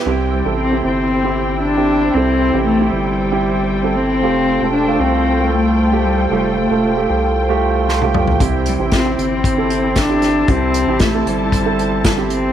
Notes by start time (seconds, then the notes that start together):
0.06 C2 C3 C4 E4 G4 C5 G5
0.33 G3
0.45 A1 C4 E4 A4
0.58 C4
0.71 C4 E4 G4
0.84 G1 C4
1.24 C4 E4 G4
1.62 D4
1.77 C4 E4 G4
2.14 C2 C3 C4 E4 A4
2.54 A1 C4 E4 G4
2.65 A3
2.81 C4 E4 G4
2.91 G1 G3
3.32 C4 E4 G4
3.83 C4 E4 A4
3.96 C4
4.22 F1 A3 F4 G4 A4
4.62 E1 A3 F4 A4
4.74 D4
4.88 A3 F4 A4
5.00 C2 C4
5.40 A3 F4 A4
5.53 A3
5.92 A3 F4 G4
6.05 G3
6.30 F1 G3 A3 F4 G4
6.57 A3
6.70 E1 A3 F4 A4
6.96 A3 F4 G4
7.10 C2
7.49 A3 F4 G4
7.88 C6, snare
8.02 A3 F4 G4, high tom
8.14 G5, mid tom
8.27 floor tom
8.38 C2 C3 C4 E4 G4, kick, closed hi-hat
8.66 G3, closed hi-hat
8.79 A1 C4 E4 G4
8.92 C4, kick, snare, closed hi-hat
9.05 C4 E4 G4
9.18 G1 C4, closed hi-hat
9.44 kick, closed hi-hat
9.57 C4 E4 A4
9.70 closed hi-hat
9.96 D4, kick, snare, closed hi-hat
10.09 C4 E4 G4
10.22 snare, closed hi-hat
10.48 C2 C3 C4 E4 G4 A5, kick, closed hi-hat
10.74 closed hi-hat
10.87 A1 C4 E4 G4
10.99 A3, kick, snare, closed hi-hat
11.14 C4 E4 A4
11.26 G1 G3, closed hi-hat
11.52 kick, closed hi-hat
11.65 C4 E4 A4
11.79 closed hi-hat
12.05 kick, snare, closed hi-hat
12.17 C4 E4 G4
12.30 C4, closed hi-hat